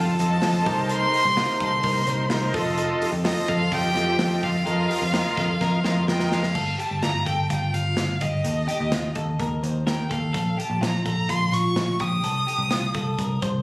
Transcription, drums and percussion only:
0.19 hi-hat pedal medium
0.19 open hi-hat medium
0.42 snare loud
0.42 hi-hat pedal medium
0.42 open hi-hat medium
0.66 kick loud
0.66 hi-hat pedal medium
0.66 open hi-hat medium
0.89 hi-hat pedal medium
0.89 open hi-hat loud
1.13 hi-hat pedal medium
1.13 open hi-hat medium
1.37 snare loud
1.37 hi-hat pedal medium
1.37 open hi-hat loud
1.60 kick loud
1.60 hi-hat pedal medium
1.60 open hi-hat medium
1.83 kick loud
1.83 hi-hat pedal medium
1.83 open hi-hat medium
2.07 hi-hat pedal medium
2.07 open hi-hat medium
2.30 snare loud
2.30 hi-hat pedal medium
2.30 open hi-hat medium
2.54 kick loud
2.54 hi-hat pedal medium
2.54 open hi-hat medium
2.78 hi-hat pedal medium
2.78 open hi-hat medium
3.02 hi-hat pedal medium
3.02 open hi-hat medium
3.25 snare loud
3.25 hi-hat pedal medium
3.25 open hi-hat loud
3.48 kick medium
3.48 hi-hat pedal medium
3.48 open hi-hat medium
3.72 kick medium
3.72 hi-hat pedal medium
3.72 open hi-hat medium
3.96 snare soft
3.96 hi-hat pedal medium
3.96 open hi-hat medium
4.19 snare loud
4.19 hi-hat pedal medium
4.19 open hi-hat medium
4.43 kick medium
4.43 hi-hat pedal medium
4.43 open hi-hat medium
4.67 hi-hat pedal medium
4.67 open hi-hat medium
4.90 hi-hat pedal medium
4.90 open hi-hat medium
5.14 snare loud
5.14 hi-hat pedal medium
5.14 open hi-hat loud
5.37 kick medium
5.37 hi-hat pedal medium
5.37 open hi-hat medium
5.61 kick loud
5.61 snare medium
5.84 snare medium
6.08 snare medium
6.20 snare medium
6.32 snare loud
6.43 snare medium
6.55 kick loud
6.55 crash medium
6.80 closed hi-hat medium
7.03 snare medium
7.03 closed hi-hat medium
7.26 kick medium
7.26 closed hi-hat medium
7.50 kick medium
7.50 closed hi-hat medium
7.74 closed hi-hat medium
7.97 snare medium
7.97 closed hi-hat medium
8.21 kick medium
8.21 closed hi-hat medium
8.45 closed hi-hat medium
8.69 closed hi-hat medium
8.92 snare loud
8.92 closed hi-hat loud
9.15 kick medium
9.15 closed hi-hat medium
9.40 kick medium
9.40 closed hi-hat medium
9.64 closed hi-hat medium
9.87 snare medium
9.87 closed hi-hat medium
10.11 kick medium
10.11 closed hi-hat medium
10.34 kick loud
10.34 closed hi-hat medium
10.60 closed hi-hat medium
10.83 snare loud
10.83 closed hi-hat loud
11.06 kick medium
11.06 closed hi-hat medium
11.29 kick medium
11.29 closed hi-hat medium
11.53 closed hi-hat medium
11.76 snare loud
11.76 closed hi-hat medium
12.00 kick medium
12.00 closed hi-hat medium
12.24 closed hi-hat medium
12.48 closed hi-hat medium
12.71 snare loud
12.71 closed hi-hat loud
12.94 kick medium
12.94 closed hi-hat medium
13.19 kick medium
13.19 closed hi-hat medium
13.42 kick medium
13.42 closed hi-hat medium

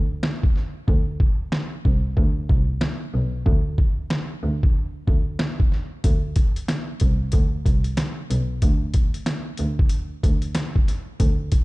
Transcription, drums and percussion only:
0.23 snare loud
0.43 kick loud
0.56 snare soft
0.88 kick loud
1.20 kick loud
1.52 snare loud
1.52 snare medium
1.85 kick medium
2.17 kick medium
2.49 kick medium
2.81 snare loud
2.81 snare medium
3.46 kick loud
3.78 kick medium
4.10 snare loud
4.10 snare medium
4.63 kick loud
5.08 kick medium
5.39 snare loud
5.39 snare medium
5.60 kick loud
5.72 snare soft
6.04 kick loud
6.04 closed hi-hat medium
6.36 kick medium
6.36 closed hi-hat medium
6.56 closed hi-hat medium
6.68 snare loud
6.68 snare medium
6.68 closed hi-hat medium
7.00 kick medium
7.00 closed hi-hat medium
7.32 kick medium
7.32 closed hi-hat medium
7.66 kick loud
7.66 closed hi-hat medium
7.84 closed hi-hat medium
7.97 snare loud
7.97 closed hi-hat medium
8.31 closed hi-hat medium
8.62 kick loud
8.62 closed hi-hat medium
8.94 kick loud
8.94 closed hi-hat medium
9.14 closed hi-hat medium
9.26 snare loud
9.26 snare medium
9.26 closed hi-hat medium
9.57 closed hi-hat medium
9.79 kick loud
9.89 closed hi-hat medium
10.23 kick medium
10.23 closed hi-hat medium
10.42 closed hi-hat medium
10.55 snare loud
10.55 closed hi-hat medium
10.76 kick loud
10.88 snare soft
10.88 closed hi-hat medium
11.20 kick loud
11.20 closed hi-hat loud
11.52 kick medium
11.52 closed hi-hat medium

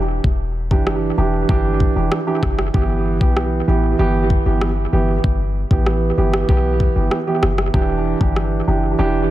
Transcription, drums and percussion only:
0.24 kick loud
0.71 kick loud
0.87 cross-stick medium
1.49 kick loud
1.80 kick medium
2.12 cross-stick loud
2.43 kick medium
2.43 cross-stick medium
2.59 cross-stick medium
2.74 kick loud
3.21 kick loud
3.37 cross-stick medium
4.30 kick medium
4.61 cross-stick medium
5.24 kick loud
5.71 kick loud
5.87 cross-stick medium
6.34 cross-stick loud
6.49 kick loud
6.80 kick medium
7.11 cross-stick medium
7.43 cross-stick loud
7.58 cross-stick medium
7.74 kick loud
8.21 kick medium
8.36 cross-stick medium

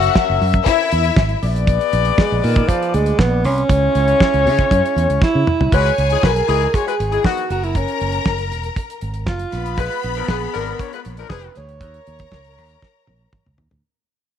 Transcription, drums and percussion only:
0.02 closed hi-hat medium
0.15 kick loud
0.15 snare loud
0.42 open hi-hat medium
0.53 kick loud
0.53 closed hi-hat soft
0.66 kick loud
0.66 closed hi-hat medium
0.92 closed hi-hat medium
1.04 closed hi-hat medium
1.16 kick loud
1.16 snare loud
1.29 closed hi-hat soft
1.43 open hi-hat medium
1.56 closed hi-hat soft
1.67 kick loud
1.67 closed hi-hat medium
1.81 closed hi-hat soft
1.93 closed hi-hat medium
2.05 closed hi-hat medium
2.18 kick loud
2.18 snare loud
2.44 open hi-hat medium
2.56 kick loud
2.56 closed hi-hat soft
2.69 kick loud
2.69 closed hi-hat medium
2.83 closed hi-hat soft
2.94 closed hi-hat medium
3.06 closed hi-hat medium
3.19 kick loud
3.19 snare loud
3.44 open hi-hat medium
3.58 closed hi-hat soft
3.69 kick loud
3.69 closed hi-hat medium
3.95 closed hi-hat medium
4.08 closed hi-hat medium
4.20 kick loud
4.20 snare loud
4.34 closed hi-hat soft
4.47 open hi-hat medium
4.58 kick loud
4.58 closed hi-hat soft
4.71 kick loud
4.71 closed hi-hat medium
4.86 closed hi-hat soft
4.98 closed hi-hat medium
5.10 closed hi-hat medium
5.22 kick loud
5.22 snare medium
5.47 mid tom loud
5.61 floor tom loud
5.72 kick loud
5.72 closed hi-hat medium
5.86 closed hi-hat soft
5.98 closed hi-hat medium
6.10 closed hi-hat medium
6.23 kick loud
6.23 snare loud
6.36 closed hi-hat medium
6.49 closed hi-hat medium
6.61 closed hi-hat soft
6.74 kick loud
6.74 closed hi-hat medium
6.88 closed hi-hat medium
7.00 closed hi-hat medium
7.12 closed hi-hat soft
7.24 kick loud
7.24 snare loud
7.37 closed hi-hat medium
7.50 closed hi-hat medium
7.63 closed hi-hat soft
7.75 kick loud
7.75 closed hi-hat medium
7.88 closed hi-hat soft
8.00 closed hi-hat medium
8.12 closed hi-hat medium
8.26 kick loud
8.26 snare loud
8.38 closed hi-hat medium
8.52 closed hi-hat medium
8.63 closed hi-hat soft
8.76 kick loud
8.76 closed hi-hat medium
8.90 closed hi-hat medium
9.01 closed hi-hat medium
9.14 closed hi-hat medium
9.26 kick loud
9.26 snare loud
9.39 closed hi-hat medium
9.52 snare soft
9.52 closed hi-hat medium
9.66 closed hi-hat medium
9.77 kick loud
9.77 closed hi-hat medium
9.91 closed hi-hat soft
10.03 closed hi-hat medium
10.15 closed hi-hat medium
10.28 kick loud
10.28 snare loud
10.41 closed hi-hat medium
10.54 closed hi-hat medium
10.66 closed hi-hat soft
10.79 kick loud
10.79 closed hi-hat medium
10.93 closed hi-hat medium
11.05 closed hi-hat medium
11.17 closed hi-hat medium
11.30 kick loud
11.30 snare loud
11.42 closed hi-hat soft
11.55 snare soft
11.55 closed hi-hat medium
11.69 closed hi-hat soft
11.81 kick loud
11.81 closed hi-hat medium
11.94 closed hi-hat soft
12.07 closed hi-hat medium
12.19 kick loud
12.19 closed hi-hat medium
12.32 kick loud
12.32 snare loud
12.44 closed hi-hat soft
12.57 open hi-hat medium
12.69 closed hi-hat soft
12.82 kick loud
12.82 snare medium
13.07 high tom medium
13.33 kick loud
13.33 mid tom medium
13.46 mid tom medium
13.58 floor tom loud
13.71 floor tom loud

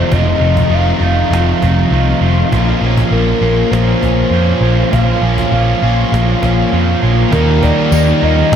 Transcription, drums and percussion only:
0.12 cajon bass loud
0.57 cajon bass medium
1.33 cajon slap loud
1.62 cajon bass medium
2.09 cajon slap soft
2.53 cajon bass loud
2.97 cajon bass medium
3.73 cajon slap loud
4.03 cajon bass medium
4.93 cajon bass loud
5.38 cajon bass medium
6.14 cajon slap loud
6.43 cajon bass medium
6.88 cajon slap soft
7.33 cajon bass loud
7.63 cajon bass medium
7.92 tambourine loud
8.39 cajon slap soft

